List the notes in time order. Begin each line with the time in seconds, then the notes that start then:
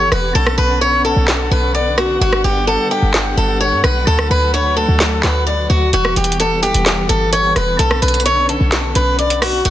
Already playing: E3 B3 G4 F#5
0.12 E1 B4, cross-stick
0.35 B1 D3 C#4 A4
0.47 cross-stick
0.58 B1 B4
0.81 C#5
1.05 A4
1.16 B1
1.28 snare, clap
1.51 B1 B4
1.75 D5
1.98 F#4, cross-stick
2.21 G1 G3 F#4
2.33 cross-stick
2.44 G1 G4
2.67 A4
2.91 G4
3.02 G1
3.14 snare, clap
3.37 G1 A4
3.61 C#5
3.72 G2
3.84 B1 B4, cross-stick
4.07 D2 F#3 A3 A4
4.19 cross-stick
4.30 D2 B4
4.54 C#5
4.77 A4
4.88 D2
5.00 snare, clap
5.23 D2 B4, snare, clap
5.47 D5
5.70 D2 F#4
5.93 E1 E3 G3 B3 F#4, closed hi-hat
6.05 cross-stick
6.16 E1 G4, closed hi-hat
6.24 closed hi-hat
6.32 closed hi-hat
6.40 A4, closed hi-hat
6.63 G4, closed hi-hat
6.74 E1, closed hi-hat
6.86 snare, clap, closed hi-hat
7.09 G1 A4, closed hi-hat
7.33 C#5, closed hi-hat
7.56 E1 B4, cross-stick, closed hi-hat
7.79 B1 D3 C#4 A4, closed hi-hat
7.91 cross-stick
8.02 B1 B4, closed hi-hat
8.08 closed hi-hat
8.14 closed hi-hat
8.20 closed hi-hat
8.26 C#5, closed hi-hat
8.49 A4, closed hi-hat
8.61 B1
8.72 snare, clap, closed hi-hat
8.95 B1 B4, closed hi-hat
9.19 D5, closed hi-hat
9.30 closed hi-hat
9.42 F#4, cross-stick, open hi-hat
9.65 G1 D3 G3 B3 F#4 F#5, closed hi-hat